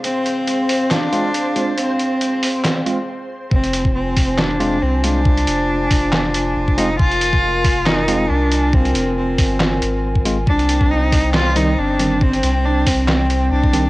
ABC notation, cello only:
X:1
M:4/4
L:1/8
Q:"Swing 16ths" 1/4=138
K:Fdor
V:1 name="Cello"
C4 D4 | C6 z2 | C2 C2 D2 C D- | D6- D E |
F4 E2 D2 | C2 C4- C z | D2 E2 F E D2 | C2 D C3 D2 |]